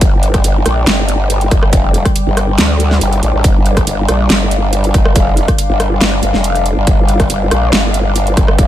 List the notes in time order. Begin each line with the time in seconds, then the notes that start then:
Already playing: G3 D4 D5 G5
0.01 G1, kick, closed hi-hat
0.23 closed hi-hat
0.34 kick, cross-stick, closed hi-hat
0.44 G1, closed hi-hat
0.66 A#1, cross-stick, closed hi-hat
0.87 G1, snare, closed hi-hat
1.08 closed hi-hat
1.30 closed hi-hat
1.41 closed hi-hat
1.51 G1, kick, cross-stick, closed hi-hat
1.63 cross-stick
1.73 F1, kick, closed hi-hat
1.94 closed hi-hat
2.05 kick, cross-stick, closed hi-hat
2.16 closed hi-hat
2.27 G1
2.37 cross-stick, closed hi-hat
2.58 D2, snare, closed hi-hat
2.80 closed hi-hat
2.91 snare
3.01 G1, closed hi-hat
3.13 closed hi-hat
3.23 A1, closed hi-hat
3.34 A1
3.44 G1 F5, kick, closed hi-hat
3.66 closed hi-hat
3.77 kick, cross-stick, closed hi-hat
3.87 G1, closed hi-hat
4.08 A#1, cross-stick, closed hi-hat
4.30 G1, snare, closed hi-hat
4.51 closed hi-hat
4.73 closed hi-hat
4.84 closed hi-hat
4.94 G1, kick, cross-stick, closed hi-hat
5.05 cross-stick
5.16 F1, kick, closed hi-hat
5.37 closed hi-hat
5.48 kick, cross-stick, closed hi-hat
5.58 closed hi-hat
5.70 G1
5.80 cross-stick, closed hi-hat
6.01 G1, snare, closed hi-hat
6.23 G1, closed hi-hat
6.34 F1, snare
6.44 closed hi-hat
6.55 closed hi-hat
6.66 closed hi-hat
6.77 G1
6.87 G1, kick, closed hi-hat
7.08 closed hi-hat
7.20 kick, cross-stick, closed hi-hat
7.30 G1, closed hi-hat
7.51 A#1, cross-stick, closed hi-hat
7.73 G1, snare, closed hi-hat
7.94 closed hi-hat
8.16 closed hi-hat
8.27 closed hi-hat
8.37 G1, kick, cross-stick, closed hi-hat
8.48 cross-stick
8.58 F1, kick, closed hi-hat